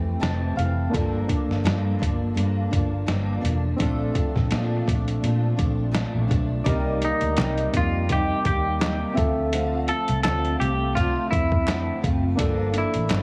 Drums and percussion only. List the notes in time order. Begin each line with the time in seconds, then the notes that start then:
0.23 snare, closed hi-hat
0.59 closed hi-hat
0.94 kick, closed hi-hat
1.29 kick, closed hi-hat
1.51 snare
1.65 snare, closed hi-hat
2.02 kick, closed hi-hat
2.37 closed hi-hat
2.73 kick, closed hi-hat
3.08 snare, closed hi-hat
3.45 closed hi-hat
3.80 kick, closed hi-hat
4.15 kick, closed hi-hat
4.36 kick, snare
4.51 snare, closed hi-hat
4.88 kick, closed hi-hat
5.08 closed hi-hat
5.24 closed hi-hat
5.59 kick, closed hi-hat
5.95 snare, closed hi-hat
6.31 kick, closed hi-hat
6.66 kick, closed hi-hat
7.02 closed hi-hat
7.21 closed hi-hat
7.37 snare, clap, closed hi-hat
7.58 closed hi-hat
7.74 kick, closed hi-hat
8.09 kick, closed hi-hat
8.45 kick, closed hi-hat
8.81 snare, clap, closed hi-hat
9.17 kick, closed hi-hat
9.53 closed hi-hat
9.88 closed hi-hat
10.08 closed hi-hat
10.23 snare, clap, closed hi-hat
10.45 closed hi-hat
10.61 closed hi-hat
10.97 kick, closed hi-hat
11.32 kick, closed hi-hat
11.52 kick
11.68 snare, clap, closed hi-hat
12.04 kick, closed hi-hat
12.39 kick, closed hi-hat
12.74 closed hi-hat
12.94 closed hi-hat
13.09 snare, clap, closed hi-hat